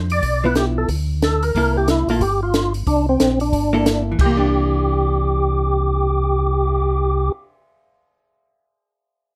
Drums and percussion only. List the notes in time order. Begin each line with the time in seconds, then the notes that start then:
0.10 open hi-hat
0.23 kick, open hi-hat
0.55 snare, closed hi-hat
0.89 kick, open hi-hat
1.22 snare, closed hi-hat
1.43 open hi-hat
1.55 kick, open hi-hat
1.88 snare, closed hi-hat
2.09 open hi-hat
2.21 kick, open hi-hat
2.54 snare, closed hi-hat
2.74 open hi-hat
2.87 kick, open hi-hat
3.20 snare, closed hi-hat
3.40 open hi-hat
3.53 kick, open hi-hat
3.86 snare, closed hi-hat
4.19 kick, crash
4.39 cymbal swell